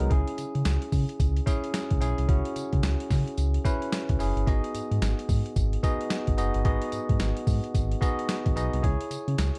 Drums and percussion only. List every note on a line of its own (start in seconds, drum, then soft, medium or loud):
0.00 closed hi-hat medium
0.11 kick loud
0.11 closed hi-hat medium
0.28 closed hi-hat medium
0.38 closed hi-hat medium
0.38 tambourine medium
0.55 closed hi-hat soft
0.65 snare loud
0.65 closed hi-hat medium
0.65 tambourine loud
0.82 closed hi-hat medium
0.92 kick loud
0.92 open hi-hat medium
0.92 tambourine medium
1.09 closed hi-hat medium
1.20 kick medium
1.20 closed hi-hat medium
1.20 tambourine medium
1.36 closed hi-hat medium
1.47 kick loud
1.47 closed hi-hat medium
1.47 tambourine medium
1.64 closed hi-hat medium
1.74 snare loud
1.74 closed hi-hat medium
1.74 tambourine medium
1.91 kick loud
1.91 closed hi-hat medium
2.01 closed hi-hat medium
2.01 tambourine medium
2.18 closed hi-hat medium
2.29 kick loud
2.29 closed hi-hat medium
2.45 closed hi-hat medium
2.56 closed hi-hat medium
2.56 tambourine medium
2.73 kick medium
2.73 closed hi-hat soft
2.83 snare loud
2.83 closed hi-hat medium
2.83 tambourine loud
3.00 closed hi-hat medium
3.10 kick medium
3.10 snare medium
3.10 open hi-hat medium
3.10 tambourine medium
3.28 closed hi-hat soft
3.37 closed hi-hat medium
3.37 tambourine medium
3.54 closed hi-hat soft
3.65 kick loud
3.65 closed hi-hat medium
3.65 tambourine medium
3.82 closed hi-hat medium
3.92 snare loud
3.92 closed hi-hat medium
3.92 tambourine loud
4.09 kick loud
4.09 closed hi-hat medium
4.20 open hi-hat medium
4.20 tambourine medium
4.37 closed hi-hat soft
4.47 kick loud
4.47 closed hi-hat medium
4.64 closed hi-hat medium
4.75 closed hi-hat medium
4.75 tambourine medium
4.92 closed hi-hat medium
5.02 snare loud
5.02 closed hi-hat medium
5.02 tambourine loud
5.19 closed hi-hat medium
5.29 kick loud
5.29 open hi-hat medium
5.29 tambourine medium
5.46 closed hi-hat medium
5.56 kick medium
5.56 closed hi-hat medium
5.56 tambourine medium
5.73 closed hi-hat medium
5.83 kick loud
5.83 closed hi-hat medium
5.83 tambourine medium
6.01 closed hi-hat medium
6.10 snare loud
6.10 closed hi-hat medium
6.10 tambourine loud
6.27 kick loud
6.27 closed hi-hat medium
6.38 closed hi-hat medium
6.38 tambourine medium
6.54 closed hi-hat medium
6.65 kick loud
6.65 closed hi-hat medium
6.82 closed hi-hat medium
6.92 closed hi-hat medium
6.92 tambourine medium
7.09 kick medium
7.09 closed hi-hat soft
7.20 snare loud
7.20 closed hi-hat medium
7.20 tambourine loud
7.37 closed hi-hat medium
7.47 kick loud
7.47 open hi-hat medium
7.47 tambourine medium
7.64 closed hi-hat soft
7.74 kick medium
7.74 closed hi-hat medium
7.74 tambourine medium
7.91 closed hi-hat medium
8.02 kick loud
8.02 closed hi-hat medium
8.02 tambourine medium
8.19 closed hi-hat medium
8.29 snare loud
8.29 closed hi-hat medium
8.29 tambourine loud
8.46 kick loud
8.46 closed hi-hat medium
8.57 closed hi-hat medium
8.57 tambourine medium
8.73 closed hi-hat medium
8.84 kick loud
8.84 closed hi-hat medium
9.01 closed hi-hat medium
9.11 closed hi-hat medium
9.11 tambourine medium
9.28 closed hi-hat soft
9.38 snare loud
9.38 closed hi-hat medium
9.38 tambourine loud
9.55 closed hi-hat medium